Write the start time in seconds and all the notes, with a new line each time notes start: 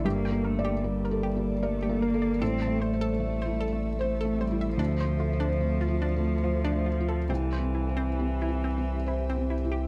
0.05 G1 G2 G3 A#3 G4 A4 D5
0.25 G5
0.32 A#3
0.44 A3 A#4
0.59 D5
0.65 G4
0.84 G3 A#3
1.05 A#4
1.11 A4
1.23 G4
1.36 A#3
1.62 A3 A#4 D5
1.83 G4
1.89 A#3
2.00 A#3 A#4
2.14 A4
2.22 D5
2.40 A1 A2 C4 A4 E5
2.62 A5
2.67 A3
2.81 A3 C5
2.93 C5
3.01 A4
3.20 A3
3.42 E4 C5
3.61 A4
3.72 A3
3.98 A3 C5
4.21 A4
4.25 A3
4.38 G3 C5
4.51 E4
4.61 E5
4.77 D2 F3 D4
4.81 A4 F5
5.00 C5
5.04 A3
5.20 F4
5.33 C5
5.40 D4
5.61 A3
5.81 F4
5.88 F4
6.02 D4
6.16 A3
6.43 F4 C5
6.64 D4
6.72 A3
6.86 F4
7.00 F4
7.09 A4
7.28 C2 E3 C4 G4 E5
7.53 C5
7.60 C4
7.75 E4
7.89 C5
7.97 C4
8.19 C4
8.42 E4
8.48 E4
8.64 C4
8.78 C4
9.07 E4 C5
9.30 C4
9.36 C4
9.50 E4
9.65 E4
9.72 G4